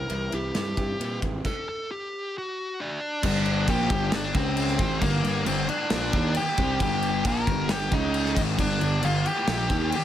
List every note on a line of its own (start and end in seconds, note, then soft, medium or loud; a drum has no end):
0.00 0.34 A#4 medium
0.08 0.28 C2 medium
0.08 0.54 C3 medium
0.08 0.53 E3 medium
0.08 0.32 G3 medium
0.08 0.30 C4 medium
0.08 0.29 E4 medium
0.08 ride medium
0.30 0.51 C2 medium
0.30 0.54 G3 medium
0.30 0.55 C4 medium
0.30 0.55 E4 medium
0.30 ride medium
0.35 0.55 G4 medium
0.54 0.73 G2 medium
0.54 0.77 E3 medium
0.54 0.76 G3 medium
0.54 0.75 C4 medium
0.54 0.75 E4 medium
0.54 1.19 G4 medium
0.54 snare loud
0.54 ride medium
0.76 0.95 G2 medium
0.76 1.23 C3 medium
0.76 0.97 E3 medium
0.76 0.98 G3 medium
0.76 0.99 C4 medium
0.76 1.00 E4 medium
0.76 kick medium
0.76 ride medium
0.99 1.18 A#2 medium
0.99 1.43 E3 medium
0.99 1.22 G3 medium
0.99 1.21 C4 medium
0.99 1.20 E4 medium
0.99 ride medium
1.21 1.40 G#1 medium
1.21 1.44 G3 medium
1.21 1.43 C4 medium
1.21 1.43 E4 medium
1.21 kick medium
1.21 ride medium
1.45 1.67 A4 medium
1.45 kick medium
1.45 crash medium
1.69 1.91 A4 medium
1.91 2.37 G4 medium
2.38 2.99 F#4 medium
2.80 3.21 D4 medium
2.80 3.24 D5 medium
3.23 3.65 G1 loud
3.23 3.68 G2 medium
3.23 3.67 D3 medium
3.23 3.68 G3 loud
3.23 3.66 D4 medium
3.23 3.71 D5 medium
3.23 kick loud
3.23 crash loud
3.23 crash medium
3.46 crash medium
3.67 3.89 A#1 medium
3.67 3.90 A#2 medium
3.67 3.90 F3 medium
3.67 3.90 A#3 loud
3.67 4.10 G4 medium
3.67 4.15 G5 loud
3.67 kick loud
3.67 crash medium
3.90 4.11 G1 loud
3.90 4.12 G2 loud
3.90 4.12 D3 loud
3.90 4.13 G3 loud
3.90 kick loud
3.90 crash medium
4.12 4.33 G1 medium
4.12 4.31 G2 medium
4.12 4.31 D3 medium
4.12 4.34 D4 medium
4.12 4.35 D5 medium
4.12 snare loud
4.12 crash medium
4.35 4.76 C#2 loud
4.35 4.79 C#3 medium
4.35 4.79 G#3 loud
4.35 4.98 C4 medium
4.35 4.80 C#4 loud
4.35 5.04 C5 medium
4.35 kick loud
4.35 crash medium
4.57 crash medium
4.68 snare soft
4.79 5.00 G#1 loud
4.79 5.01 G#2 medium
4.79 5.01 D#3 medium
4.79 5.02 G#3 medium
4.79 kick loud
4.79 crash medium
5.01 5.23 G1 medium
5.01 5.20 G2 medium
5.01 5.20 D3 medium
5.01 5.43 A#3 medium
5.01 5.48 A#4 medium
5.01 kick medium
5.01 crash medium
5.24 5.45 G1 medium
5.24 5.42 G2 medium
5.24 5.42 D3 medium
5.24 crash medium
5.45 5.67 G1 medium
5.45 5.64 G2 medium
5.45 5.64 D3 medium
5.45 5.67 C4 medium
5.45 5.69 C5 loud
5.45 crash medium
5.69 6.32 D4 medium
5.69 6.38 D5 medium
5.69 crash medium
5.90 6.12 A#1 loud
5.90 6.12 A#2 medium
5.90 6.12 F3 loud
5.90 6.12 A#3 loud
5.90 snare loud
5.90 crash medium
6.12 6.34 D#2 loud
6.12 6.35 D#3 medium
6.12 6.35 A#3 loud
6.12 6.35 D#4 loud
6.12 kick loud
6.12 crash medium
6.35 6.78 G4 medium
6.35 6.81 G5 loud
6.35 muted picked electric bass stroke soft
6.35 muted distorted electric guitar stroke medium
6.35 crash medium
6.57 6.79 C2 loud
6.57 6.80 C3 medium
6.57 6.80 G3 loud
6.57 6.80 C4 loud
6.57 kick loud
6.57 crash medium
6.80 7.21 G1 medium
6.80 7.24 G2 loud
6.80 7.25 D3 loud
6.80 7.25 G3 loud
6.80 7.23 G4 medium
6.80 7.27 G5 loud
6.80 kick loud
6.80 crash medium
7.02 crash medium
7.25 7.46 A#1 medium
7.25 7.46 A#2 loud
7.25 7.47 F3 medium
7.25 7.47 A#3 medium
7.25 7.67 A#4 medium
7.25 7.72 A#5 medium
7.25 kick loud
7.25 crash medium
7.47 7.68 G1 loud
7.47 7.68 G2 medium
7.47 7.68 D3 medium
7.47 7.69 G3 loud
7.47 kick loud
7.47 crash medium
7.69 7.90 G1 medium
7.69 7.87 G2 medium
7.69 7.87 D3 medium
7.69 7.91 G4 medium
7.69 7.93 G5 medium
7.69 snare loud
7.69 crash medium
7.92 8.33 C#2 loud
7.92 8.35 C#3 medium
7.92 8.35 G#3 loud
7.92 8.36 C#4 loud
7.92 8.34 D#4 medium
7.92 8.38 D#5 loud
7.92 kick loud
7.92 crash medium
8.14 crash medium
8.25 snare soft
8.37 8.57 G#1 loud
8.37 8.58 G#2 loud
8.37 8.58 D#3 loud
8.37 8.58 G#3 loud
8.37 kick loud
8.37 crash medium
8.58 8.79 G1 medium
8.58 8.76 G2 medium
8.58 8.77 D3 medium
8.58 9.01 D4 medium
8.58 9.05 D5 medium
8.58 kick loud
8.58 crash medium
8.80 9.02 G1 medium
8.80 8.98 G2 medium
8.80 8.98 D3 medium
8.80 crash medium
9.03 9.24 G1 medium
9.03 9.21 G2 medium
9.03 9.21 D3 medium
9.03 9.25 F4 medium
9.03 9.27 F5 loud
9.03 crash medium
9.26 9.89 G4 medium
9.26 9.94 G5 loud
9.26 crash medium
9.47 9.68 A#1 loud
9.47 9.69 A#2 loud
9.47 9.70 F3 loud
9.47 9.69 A#3 loud
9.47 snare loud
9.47 crash medium
9.70 9.91 D#2 loud
9.70 9.91 D#3 loud
9.70 9.91 A#3 medium
9.70 9.92 D#4 medium
9.70 kick loud
9.70 crash medium
9.92 10.04 G4 medium
9.92 10.04 G5 medium
9.92 muted picked electric bass stroke soft
9.92 muted distorted electric guitar stroke medium
9.92 crash medium